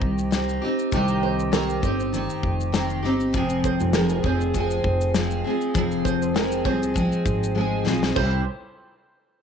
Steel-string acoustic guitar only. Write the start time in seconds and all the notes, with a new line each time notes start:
Already playing: D#3 C4 D#4 G4
0.31 D#3 C4 D#4 G4
0.62 C4 D#4 G4
0.92 C3 D#3 C4 D#4 G4
1.52 D#3 C4 D#4 G4
1.82 C4 D#4 G4
2.13 D#3 C4 D#4 G4
2.72 D#3 C4 D#4 G4
3.03 C4 D#4 G4
3.33 F2 C3 F3 G#3 C4 G#4
3.93 F3 G#3 C4 G#4
4.23 F3 G#3 C4 G#4
4.54 F3 G#3 C4 G#4
5.14 F3 G#3 C4 G#4
5.44 F3 G#3 C4 G#4
5.74 F2 C3 F3 G#3 C4 G#4
6.34 F3 G#3 C4 G#4
6.64 F3 G#3 C4 G#4
6.94 F3 G#3 C4 G#4
7.55 F3 G#3 C4 G#4
7.85 F3 G#3 C4 G#4
8.15 C3 G3 C4 E4 G4